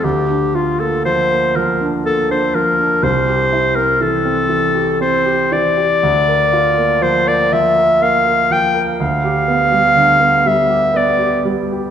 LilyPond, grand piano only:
\new Staff \with { instrumentName = "Grand piano" } { \time 3/4 \key bes \lydian \tempo 4 = 60 d,16 d'16 f'16 bes16 f16 bes16 f16 d'16 bes16 d'16 f16 d'16 | c,16 g'16 e'16 c'16 e16 c'16 e16 g'16 c'16 g'16 e16 g'16 | d,16 bes'16 f'16 bes16 f16 bes16 f16 bes'16 bes16 bes'16 f16 bes'16 | d,16 g'16 b16 g16 d16 b16 g16 g'16 b16 g'16 g16 g'16 | }